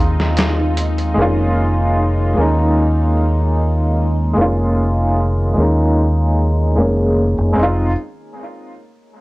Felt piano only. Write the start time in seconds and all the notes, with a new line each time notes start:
Already playing: G#3 C4 D#4 F4
1.14 G#3 A#3
1.19 C#4 F4
2.34 G#3 A#3
2.39 C#4 D#4
4.33 G#3 A#3
4.39 C#4 F4
5.53 G#3 A#3
5.58 C#4 D#4
6.75 G#3 A#3 C#4 G#4
7.52 G#3 C4
7.59 D#4 F4